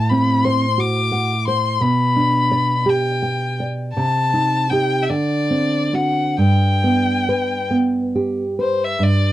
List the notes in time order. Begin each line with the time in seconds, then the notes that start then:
Already playing: A2 A5
0.10 C4 B5
0.45 C5 C6
0.78 F#4 D6
1.12 F#5
1.48 C5 C6
1.81 B2 B5
2.16 D4
2.51 D5
2.86 G4 G5
3.23 G5
3.60 D5
3.95 C3 A5
4.33 D#4
4.70 D#4 G4 G5
5.03 E5
5.10 D3 D5
5.50 C4
5.93 C4 F#4 F#5
6.38 G2 G5
6.84 B3
7.29 B4
7.71 B3
8.15 G4
8.59 B4 C5
8.84 E5
8.99 G2
9.03 D5